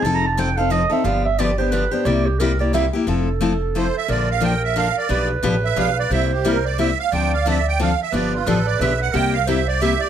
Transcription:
X:1
M:3/4
L:1/16
Q:"Swing" 1/4=178
K:F
V:1 name="Accordion"
z12 | z12 | z12 | z8 c2 e2 |
d2 f2 g2 e2 f2 d2- | d2 z4 e2 f2 d2 | e2 G2 B2 d2 e2 f2 | g2 f2 e2 g2 f2 e2 |
d2 F2 A2 d2 e2 _g2 | g2 f2 e2 d2 e2 d2 |]
V:2 name="Clarinet"
(3a2 b2 a2 g2 f2 _e2 =e2 | f2 e2 d2 c2 =B2 c2 | d2 G2 B2 d2 e2 z2 | A12 |
B12 | =B12 | c8- c2 z2 | d8 z4 |
=B12 | B4 c4 G4 |]
V:3 name="Steel-string acoustic guitar"
[F,C_EA]2 z2 [F,CEA] z [CEA]2 [F,CEA] z [CEA]2 | [D,F,=B,DG]2 z2 [D,F,B,DG] z [B,DG]2 [D,F,B,DG] z [B,DG]2 | [C,G,B,EG]2 z2 [C,G,B,EG] z [B,EG]2 [C,G,B,EG] z [B,EG]2 | [F,A,CEA]2 z2 [F,A,CEA] z3 [F,A,CEA] z3 |
[D,F,B,DA]2 z2 [D,F,B,DA] z3 [D,F,B,DA] z3 | [=B,,F,=B,DG=B]2 z2 [B,,F,B,DGB] z3 [B,,F,B,DGB] z3 | [C,G,B,EG]2 z2 [C,G,B,EG] z3 [C,G,B,EG] z3 | [D,F,CDA]2 z2 [D,F,CDA] z3 [D,F,CDA] z3 |
[D,F,=B,DG]2 z2 [D,F,B,DG] z3 [D,F,B,DG] z3 | [C,G,B,EG]2 z2 [C,G,B,EG] z3 [C,G,B,EG] z3 |]
V:4 name="Upright bass" clef=bass
F,,,12 | G,,,12 | C,,12 | F,,,12 |
B,,,12 | =B,,,4 A,,,4 B,,,4 | C,,12 | D,,12 |
G,,,4 A,,,4 =B,,,4 | C,,12 |]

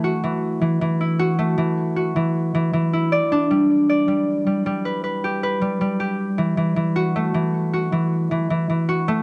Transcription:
X:1
M:4/4
L:1/16
Q:1/4=78
K:F#m
V:1 name="Harp" clef=bass
F E, z E, E, E F A, E,2 F E, z E, E, E | d D =G,2 d G, z G, G, B B =G B G, G, G | z E, E, E, F A, E,2 F E, z E, E, E, F A, |]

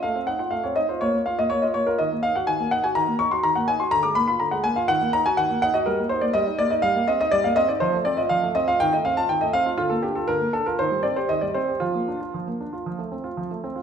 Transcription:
X:1
M:4/4
L:1/16
Q:1/4=122
K:Ebdor
V:1 name="Grand piano"
f2 g g f d e c d2 f e d e d B | e2 f g a2 g a b2 d' c' b g a c' | b =d' _c' c' b g a f g2 b a g2 g e | [K:Bb] B2 c d e2 d e f2 e e d f e d |
c2 d e f2 e f g e f a g e f2 | F A G A B2 A B c2 d c e d c2 | F12 z4 |]
V:2 name="Grand piano"
=A, C E F A, C E F B, B, F B, B, F B, F | E, B, E G E, B, E G E, B, E G E, B, E G | =D, A, B, F D, A, B, F E, B, E G E, B, E G | [K:Bb] G, B, E B, G, E B, E G, B, C E G, B, C E |
F, A, C F F, A, C F E, A, C F E, A, C F | D, B, D F D, B, D F E, G, C G E, G, C G | F, B, D F F, B, D F F, A, C F F, A, C F |]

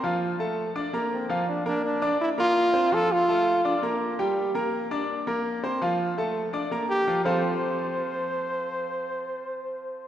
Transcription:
X:1
M:4/4
L:1/8
Q:1/4=166
K:F
V:1 name="Grand piano"
[F,Ff]2 [A,Aa]2 [Ddd'] [B,Bb]2 [F,Ff] | z [B,Bb]2 [Ddd']2 [B,Bb]2 [Ccc'] | [F,Ff]2 [A,Aa]2 [Ddd'] [B,Bb]2 [G,Gg]- | [G,Gg] [B,Bb]2 [Ddd']2 [B,Bb]2 [Ccc'] |
[F,Ff]2 [A,Aa]2 [Ddd'] [B,Bb]2 [F,Ff] | [F,CFAcf]8- | [F,CFAcf]8 |]
V:2 name="Trombone"
z6 C2 | D D D2 E F3 | A F4 z3 | z8 |
z6 G2 | c8- | c8 |]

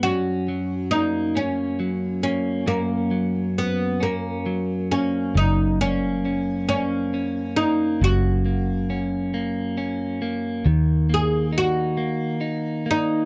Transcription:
X:1
M:6/8
L:1/8
Q:3/8=45
K:F#mix
V:1 name="Oud"
F2 D C2 C | A,2 B, A,2 C | D C2 C2 D | F2 z4 |
z G F3 D |]
V:2 name="Clean electric guitar"
[F,,C] F, A, C F, A, | [F,,C] F,2 C F, A, | F,, A, C A, C A, | F,, A, C A, C A, |
D, A, D A, D A, |]
V:3 name="Fingered electric bass" clef=bass
z6 | z6 | F,,,6 | F,,,6 |
D,,6 |]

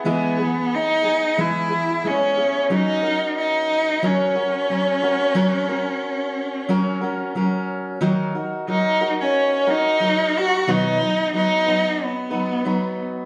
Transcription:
X:1
M:4/4
L:1/16
Q:1/4=90
K:F#mix
V:1 name="Cello"
B,4 D4 E4 C4 | D4 D4 C8- | C12 z4 | z4 D3 C3 D4 F2 |
D4 D4 B,6 z2 |]
V:2 name="Steel-string acoustic guitar"
[E,G,B,EG]2 [B,G]4 [B,G]2 [E,G,B,EG]2 [B,EG]2 [G,B,EG]2 [B,EG]2 | [F,CFA]2 [CFA]6 [F,CFA]2 [CFA]2 [F,CFA]2 [CFA]2 | [F,CFA]2 [CFA]6 [F,CFA]2 [CFA]2 [F,CFA]4 | [D,F,DFA]2 [DFA]2 [F,DFA]2 [DFA]4 [DFA]2 [F,DFA]4 |
[B,,D,F,B,DB]2 [F,B,DB]2 [F,B,DB]2 [F,B,DB]4 [F,B,DB]2 [F,B,DB]4 |]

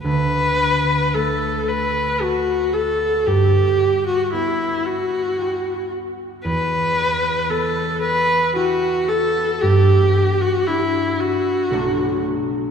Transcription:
X:1
M:3/4
L:1/16
Q:1/4=57
K:Bm
V:1 name="Viola"
B4 A2 B2 F2 A2 | G3 F E2 F4 z2 | B4 A2 B2 F2 A2 | G3 F E2 F4 z2 |]
V:2 name="Harp"
[D,,A,FB]4 A,4 [FA]4 | G,,4 B,4 [FG]4 | E,,4 B,4 [EG]4 | G,,4 [DF]4 [B,,,A,DF]4 |]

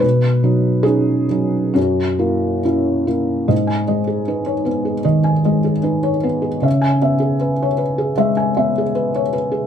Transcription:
X:1
M:4/4
L:1/16
Q:1/4=76
K:G#m
V:1 name="Felt piano"
B4 G4 F4 z4 | d g d G B c B G d g d G B c B G | e g e G B c B G e g e G B c B G |]
V:2 name="Felt piano"
B,,2 [F,D]2 [CD]2 [F,D]2 F,,2 [A,E]2 [CE]2 [A,E]2 | G,,2 G,2 D2 B,2 D,2 G,2 D2 B,2 | C,2 B,4 z2 G,2 B,4 z2 |]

